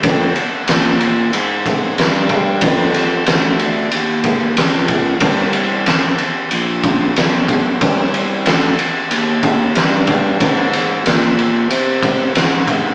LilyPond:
<<
  \new Staff \with { instrumentName = "Fingered electric bass" } { \clef bass \time 4/4 \key c \minor \tempo 4 = 93 f,8 r8 bes,4 aes,4 g,4 | f,4 d,4 ees,4 des,4 | c,4 aes,,8 r8 bes,,4 b,,4 | c,4 d,8 r8 ees,4 g,4 |
aes,4 bes,4 c4 aes,4 | }
  \new DrumStaff \with { instrumentName = "Drums" } \drummode { \time 4/4 <bd cymr>8 cymr8 <cymr sn>8 cymr8 cymr8 <bd cymr>8 <cymr sn>8 <bd cymr>8 | <bd cymr>8 <cymr sn>8 <cymr sn>8 cymr8 cymr8 <bd cymr>8 <cymr sn>8 <bd cymr>8 | <bd cymr>8 cymr8 <cymr sn>8 cymr8 cymr8 <bd cymr>8 <cymr sn>8 <bd cymr>8 | <bd cymr>8 cymr8 <cymr sn>8 cymr8 cymr8 <bd cymr>8 <cymr sn>8 <bd cymr>8 |
<bd cymr>8 <cymr sn>8 <cymr sn>8 cymr8 cymr8 <bd cymr>8 <cymr sn>8 <bd cymr>8 | }
>>